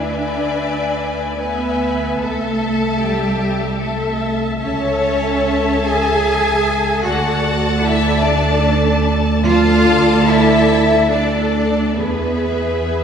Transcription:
Already playing: double bass section D2, cello section D4, viola section B4 E5, violin section D5 G#5
1.39 cello section B3, violin section B4 G#5, viola section B4 E5
2.21 double bass section C2, cello section A3, violin section A4 A5, viola section A4 E5
3.00 cello section G3, violin section G4
3.80 cello section A3, violin section A4 A5, viola section A4 E5
4.59 double bass section C#2, cello section C#4, viola section A4 E5, violin section C#5 A5
5.84 cello section G#4, violin section G#5
7.04 double bass section D2, cello section F#4, viola section A4 D5, violin section F#5 A5
7.83 cello section E4, violin section E5
8.23 cello section D4, violin section D5
9.45 cello section F4, viola section A4 D5, violin section F5 A5
10.27 cello section E4, violin section E5
11.11 cello section D4, viola section A4 D5, violin section D5 A5
11.97 double bass section E2, cello section B3, viola section G#4 B4, violin section B4 E5

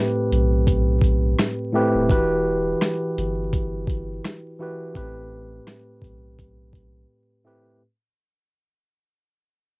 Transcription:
Already playing: tine electric piano A2 A3 C4 G4 B4
0.32 sub bass B1, closed hi-hat
0.67 kick, closed hi-hat
1.01 kick, closed hi-hat
1.39 cross-stick, snare, closed hi-hat
1.73 tine electric piano A2 A3 C4 G4 B4
1.94 sub bass D#1
2.08 sub bass E1, tine electric piano E3 E4 F#4 G4 B4, kick, closed hi-hat
2.81 cross-stick, snare, closed hi-hat
3.18 sub bass G1, closed hi-hat
3.53 kick, closed hi-hat
3.87 kick, closed hi-hat
4.24 cross-stick, snare, closed hi-hat
4.59 tine electric piano E3 E4 F#4 G4 B4
4.94 sub bass A1, tine electric piano A2 A3 C4 G4 B4, kick, closed hi-hat
5.67 cross-stick, snare, closed hi-hat
6.02 sub bass B1, kick, closed hi-hat
6.39 kick, closed hi-hat
6.73 kick, closed hi-hat
7.44 tine electric piano A2 A3 C4 G4 B4

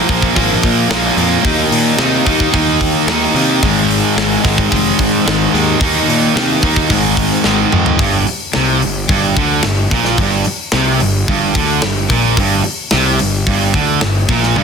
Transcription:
0.09 picked electric bass A#1, overdriven electric guitar A#2 F3 A#3, kick
0.22 kick
0.35 picked electric bass G#1, overdriven electric guitar A#2 F3 A#3, kick, open hi-hat
0.63 picked electric bass A#2, kick, open hi-hat
0.89 picked electric bass A#1, overdriven electric guitar A#2 F3 A#3, snare, open hi-hat
1.16 picked electric bass F2, overdriven electric guitar A#2 F3 A#3, open hi-hat
1.43 picked electric bass D#2, overdriven electric guitar D#3 A#3 D#4, kick, open hi-hat
1.71 picked electric bass A#2, open hi-hat
1.97 picked electric bass C3, overdriven electric guitar D#3 A#3 D#4, snare, open hi-hat
2.26 picked electric bass D#2, overdriven electric guitar D#3 A#3 D#4, kick, open hi-hat
2.40 kick
2.52 picked electric bass D#2, overdriven electric guitar D#3 A#3 D#4, kick, open hi-hat
2.81 kick, open hi-hat
3.07 picked electric bass D#2, overdriven electric guitar D#3 A#3 D#4, snare, open hi-hat
3.34 picked electric bass C3, overdriven electric guitar D#3 A#3 D#4, open hi-hat
3.62 picked electric bass G#1, overdriven electric guitar G#2 D#3 G#3, kick, open hi-hat
3.90 open hi-hat
4.16 picked electric bass G#1, overdriven electric guitar G#2 D#3 G#3, snare
4.44 picked electric bass G#1, overdriven electric guitar G#2 D#3 G#3, kick, open hi-hat
4.58 kick
4.72 picked electric bass F1, overdriven electric guitar G#2 D#3 G#3, kick, open hi-hat
4.99 picked electric bass G#2, kick, open hi-hat
5.25 picked electric bass G#1, overdriven electric guitar G#2 D#3 G#3, snare, open hi-hat
5.53 picked electric bass D#2, overdriven electric guitar G#2 D#3 G#3, open hi-hat
5.79 picked electric bass D#2, overdriven electric guitar D#3 A#3 D#4, kick, open hi-hat
6.08 picked electric bass A#2, open hi-hat
6.35 picked electric bass C3, overdriven electric guitar D#3 A#3 D#4, snare, open hi-hat
6.63 picked electric bass D#2, overdriven electric guitar D#3 A#3 D#4, kick, open hi-hat
6.76 kick
6.90 picked electric bass G#1, overdriven electric guitar G#2 D#3 G#3, kick, open hi-hat
7.17 kick, open hi-hat
7.44 picked electric bass G#1, overdriven electric guitar G#2 D#3 G#3, snare
7.71 picked electric bass F2, overdriven electric guitar G#2 D#3 G#3, mid tom
7.86 floor tom
7.98 picked electric bass G1, overdriven electric guitar G2, kick, open hi-hat
8.25 muted overdriven electric guitar stroke, muted distorted electric guitar stroke, open hi-hat
8.29 muted picked electric bass stroke
8.53 picked electric bass C2, overdriven electric guitar C3, snare
8.82 picked electric bass G1, overdriven electric guitar G2, open hi-hat
9.08 picked electric bass G1, overdriven electric guitar G2, kick, open hi-hat
9.36 picked electric bass D2, overdriven electric guitar D3, kick, open hi-hat
9.63 picked electric bass G1, overdriven electric guitar G2, snare, open hi-hat
9.91 picked electric bass A#1, overdriven electric guitar A#2, kick, open hi-hat
10.05 snare
10.18 picked electric bass G1, overdriven electric guitar G2, kick, open hi-hat
10.45 muted overdriven electric guitar stroke, muted distorted electric guitar stroke, muted picked electric bass stroke, open hi-hat
10.72 picked electric bass C2, overdriven electric guitar C3, snare
10.99 picked electric bass G1, overdriven electric guitar G2, open hi-hat
11.28 picked electric bass G1, overdriven electric guitar G2, kick, open hi-hat
11.54 picked electric bass D2, overdriven electric guitar D3, kick, open hi-hat
11.81 picked electric bass G1, overdriven electric guitar G2, snare, open hi-hat
12.09 picked electric bass A#1, overdriven electric guitar A#2, kick, open hi-hat
12.36 picked electric bass G1, overdriven electric guitar G2, kick, open hi-hat
12.63 muted overdriven electric guitar stroke, muted distorted electric guitar stroke, muted picked electric bass stroke, open hi-hat
12.91 picked electric bass C2, overdriven electric guitar C3, snare, open hi-hat
13.19 picked electric bass G1, overdriven electric guitar G2, open hi-hat
13.47 picked electric bass G1, overdriven electric guitar G2, kick, open hi-hat
13.74 picked electric bass D2, overdriven electric guitar D3, kick, open hi-hat
14.01 picked electric bass G1, overdriven electric guitar G2, snare, open hi-hat
14.28 picked electric bass A#1, overdriven electric guitar A#2, kick, open hi-hat
14.43 snare
14.56 picked electric bass G1, overdriven electric guitar G2, high tom

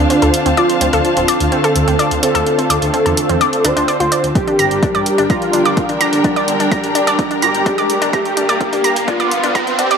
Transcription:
Already playing: analog synth pad D3 C4 F4, analog synth lead D4, string section D4 C5 F5 A5
0.10 synth arpeggio sound C4, closed hi-hat
0.22 detuned saw bass D2, synth arpeggio sound A4, closed hi-hat
0.34 closed hi-hat
0.46 detuned saw bass D2, synth arpeggio sound C4, closed hi-hat
0.57 analog synth lead F4, synth arpeggio sound D5, closed hi-hat
0.70 closed hi-hat
0.81 detuned saw bass D2, synth arpeggio sound C4, closed hi-hat
0.93 detuned saw bass D2, synth arpeggio sound A4, closed hi-hat
1.05 closed hi-hat
1.17 detuned saw bass D1, synth arpeggio sound C4, closed hi-hat
1.28 synth arpeggio sound D5, closed hi-hat
1.40 detuned saw bass D2, closed hi-hat
1.52 synth arpeggio sound C4, analog synth lead A4, closed hi-hat
1.64 synth arpeggio sound A4, closed hi-hat
1.76 detuned saw bass D2, closed hi-hat
1.88 detuned saw bass D2, synth arpeggio sound C4, closed hi-hat
1.99 synth arpeggio sound D5, closed hi-hat
2.11 detuned saw bass D2, closed hi-hat
2.23 synth arpeggio sound C4, analog synth lead A4, closed hi-hat
2.35 detuned saw bass D2, synth arpeggio sound A4, closed hi-hat
2.47 closed hi-hat
2.58 synth arpeggio sound C4, closed hi-hat
2.70 detuned saw bass D2, synth arpeggio sound D5, closed hi-hat
2.82 detuned saw bass D2, closed hi-hat
2.94 synth arpeggio sound C4, closed hi-hat
3.06 detuned saw bass E2, synth arpeggio sound A4, closed hi-hat
3.17 closed hi-hat
3.29 detuned saw bass E2, synth arpeggio sound C4, closed hi-hat
3.41 synth arpeggio sound D5, closed hi-hat
3.53 closed hi-hat
3.65 detuned saw bass D2, synth arpeggio sound D4, analog synth lead C5, closed hi-hat
3.77 detuned saw bass D2, synth arpeggio sound D4, closed hi-hat
3.88 synth arpeggio sound D5, closed hi-hat
4.00 detuned saw bass D2, synth arpeggio sound F4, closed hi-hat
4.12 synth arpeggio sound D5, closed hi-hat
4.24 detuned saw bass D2, closed hi-hat
4.35 analog synth pad G3 D4 A#4, string section D4, analog synth lead G4, kick, closed hi-hat, riser
4.47 synth arpeggio sound D4, closed hi-hat
4.53 string section A#4
4.59 detuned saw bass G1, synth arpeggio sound A#5, closed hi-hat
4.71 detuned saw bass G1, string section G5, closed hi-hat
4.83 synth arpeggio sound D4, kick, closed hi-hat
4.95 detuned saw bass G2, synth arpeggio sound D5, closed hi-hat
5.06 closed hi-hat
5.18 detuned saw bass G1, synth arpeggio sound D4, closed hi-hat
5.30 analog synth lead F4, synth arpeggio sound A#5, kick, closed hi-hat
5.42 closed hi-hat
5.53 detuned saw bass G1, synth arpeggio sound D4, closed hi-hat
5.65 detuned saw bass G1, synth arpeggio sound D5, closed hi-hat
5.77 kick, closed hi-hat
5.86 detuned saw bass G1, synth arpeggio sound D4, string section A#5, closed hi-hat
6.01 analog synth lead D4, synth arpeggio sound A#5, closed hi-hat
6.13 detuned saw bass G1, closed hi-hat
6.24 synth arpeggio sound D4, kick, closed hi-hat
6.36 synth arpeggio sound D5, closed hi-hat
6.48 detuned saw bass G1, closed hi-hat
6.60 detuned saw bass G1, synth arpeggio sound D4, closed hi-hat
6.72 synth arpeggio sound A#5, kick, closed hi-hat
6.84 detuned saw bass A1, closed hi-hat
6.95 synth arpeggio sound D4, closed hi-hat
7.07 detuned saw bass A1, synth arpeggio sound D5, closed hi-hat
7.19 kick, closed hi-hat
7.31 synth arpeggio sound D4, closed hi-hat
7.42 detuned saw bass G1, analog synth lead G4, synth arpeggio sound A#5, closed hi-hat
7.55 detuned saw bass G1, closed hi-hat
7.66 synth arpeggio sound D4, kick, closed hi-hat
7.78 detuned saw bass G1, synth arpeggio sound D5, closed hi-hat
7.90 closed hi-hat
8.02 detuned saw bass G1, synth arpeggio sound D4, closed hi-hat
8.13 analog synth lead G4, synth arpeggio sound A#5, kick, closed hi-hat
8.25 closed hi-hat
8.37 detuned saw bass G1, synth arpeggio sound D4, closed hi-hat
8.42 string section F5
8.49 detuned saw bass G1, synth arpeggio sound D5, closed hi-hat
8.61 kick, closed hi-hat
8.73 detuned saw bass G2, synth arpeggio sound D4, closed hi-hat
8.84 synth arpeggio sound A#5, closed hi-hat
8.96 detuned saw bass G1, closed hi-hat
9.08 synth arpeggio sound D4, analog synth lead F4, kick, closed hi-hat
9.20 synth arpeggio sound D5, closed hi-hat
9.31 detuned saw bass G1, closed hi-hat
9.44 detuned saw bass G1, synth arpeggio sound D4, closed hi-hat
9.55 synth arpeggio sound A#5, kick, closed hi-hat
9.67 detuned saw bass G1, closed hi-hat
9.79 synth arpeggio sound D4, analog synth lead G4, closed hi-hat
9.91 detuned saw bass G1, synth arpeggio sound D5, closed hi-hat

